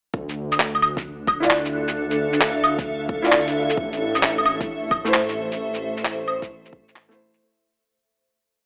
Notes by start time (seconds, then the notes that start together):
0.14 D2 D4, kick
0.29 shaker
0.50 A4, claves, shaker
0.60 clap
0.75 E5, claves
0.82 claves
0.97 kick, shaker
1.27 kick, claves
1.40 E4 F4, shaker
1.44 D5
1.50 F5, clap
1.65 shaker
1.88 shaker
2.11 shaker
2.33 shaker
2.41 clap
2.64 claves
2.78 kick, shaker
3.09 kick
3.22 E4 F4, shaker
3.26 D5
3.32 clap
3.47 shaker
3.70 shaker
3.77 A1 A3, kick
3.93 shaker
4.15 claves, shaker
4.23 clap
4.38 claves
4.46 claves
4.61 C5, kick, shaker
4.91 kick, claves
5.05 A3 E4 C5, shaker
5.14 clap
5.29 shaker
5.52 shaker
5.74 shaker
5.97 shaker
6.05 clap
6.28 claves
6.42 kick, shaker
6.65 shaker
6.73 kick
6.88 shaker
6.96 clap
7.09 A3 E4, shaker
7.13 C5
7.34 shaker